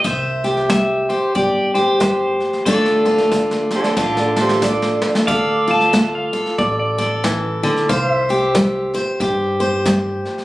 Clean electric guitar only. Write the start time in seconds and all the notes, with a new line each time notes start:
3.75 A4 D5
3.96 A4 D5
4.19 A4 D5
4.41 G4 C5
4.62 D5